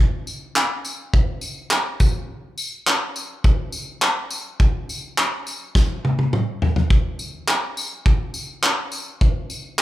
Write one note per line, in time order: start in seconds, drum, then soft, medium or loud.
0.27 tambourine medium
0.56 clap loud
0.85 tambourine medium
1.14 kick loud
1.41 tambourine medium
1.71 clap loud
2.00 kick loud
2.00 tambourine medium
2.58 tambourine medium
2.87 clap loud
3.16 tambourine medium
3.44 kick loud
3.72 tambourine medium
4.02 clap loud
4.30 tambourine medium
4.60 kick loud
4.89 tambourine medium
5.18 clap loud
5.47 tambourine medium
5.75 kick loud
5.75 snare medium
6.05 high tom medium
6.19 high tom medium
6.33 mid tom medium
6.62 floor tom loud
6.76 floor tom medium
6.90 kick loud
7.19 tambourine medium
7.48 clap loud
7.77 tambourine medium
8.06 kick loud
8.34 tambourine medium
8.63 clap loud
8.92 tambourine medium
9.21 kick loud
9.50 tambourine medium